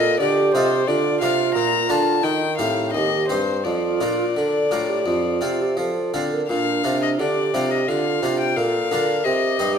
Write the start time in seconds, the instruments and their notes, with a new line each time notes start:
Already playing: harpsichord A#2 D#4 F4 A4, bassoon A#2, flute A4, violin D#5
0.19 bassoon D3, harpsichord D3, flute G4, violin D5
0.53 bassoon C3, harpsichord C3 D#4 F4 A4, violin C5
0.87 bassoon D3, harpsichord D3, flute F4, violin D5
1.21 harpsichord C3 D4 F4 A#4, bassoon C3, violin F5
1.55 harpsichord A#2, bassoon A#2, violin A#5
1.89 harpsichord D3 D4 F4 A#4, bassoon D3, violin A5
2.23 harpsichord D#3, bassoon D#3, flute D#4, violin G5
2.58 harpsichord A2 C4 G4 C5, bassoon A2, violin F5
2.92 bassoon D#2, harpsichord D#2, flute G4, violin D#5
3.28 harpsichord G2 C4 G4 C5, bassoon G2, violin C5
3.64 harpsichord F2, bassoon F2, flute F4, violin D5
4.01 harpsichord A#2 D4 F4 A#4, bassoon A#2
4.36 harpsichord D3, bassoon D3, flute A4
4.71 harpsichord A2 D4 F4 A#4, bassoon A2
4.89 flute G4
5.06 harpsichord F2, bassoon F2, flute F4
5.41 harpsichord C3 C4 F4 A4, bassoon C3
5.62 flute G4
5.77 harpsichord F3, bassoon F3, flute A4
6.14 harpsichord D3 C4 F4 A4, bassoon D3
6.33 flute A#4
6.49 bassoon A#2, harpsichord A#2, flute D4, violin F5
6.84 harpsichord C3 D4 F4 A#4, bassoon C3
7.02 violin D#5
7.19 bassoon D3, harpsichord D3, flute G4, violin D5
7.53 bassoon C3, harpsichord C3 D4 F4 A#4
7.70 violin D#5
7.88 bassoon D3, harpsichord D3, flute F4, violin F5
8.22 bassoon C3, harpsichord C3 D4 F4 A#4
8.40 violin G5
8.57 bassoon A#2, harpsichord A#2, flute A4, violin F5
8.91 bassoon D3, harpsichord D3 D4 F4 A#4, flute A#4
9.24 bassoon C3, harpsichord C3, flute G4, violin D#5
9.58 bassoon G2, harpsichord G2 D#4 G4 C5